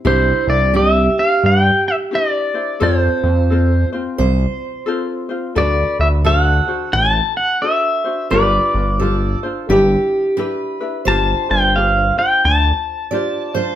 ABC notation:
X:1
M:4/4
L:1/8
Q:"Swing" 1/4=87
K:C
V:1 name="Pedal steel guitar"
c d e f g e d2 | c3 z4 z | d e ^f2 a f e2 | d3 z4 z |
a g f g a4 |]
V:2 name="Steel-string acoustic guitar"
E2 G6 | A4 c4 | B2 A6 | B2 A2 G2 B2 |
c6 d c |]
V:3 name="Ukulele"
[DEGc] [DEc] [DEGc] [Dc]3 [DEGc] [DEc] | [CFAc] [CFc] [CFAc] [CFc]3 [CFAc] [CFc] | [D^FA] [DF] [DFAc] [DFc]3 [DFAc] [DFc] | [DFG] [DF] [DFGc] [DFc] [DEGB]2 [DEGB] [DEB] |
[DFGc] [DFc] [DFGc] [DFc]3 [DFGc] [DFc] |]
V:4 name="Analog synth bass" clef=bass
C,, C,,3 G,, z3 | F,, F,,3 C,, z3 | D,, D,,3 A,,, z3 | G,,, G,,,3 G,,, z3 |
G,,, G,,,3 D,, z3 |]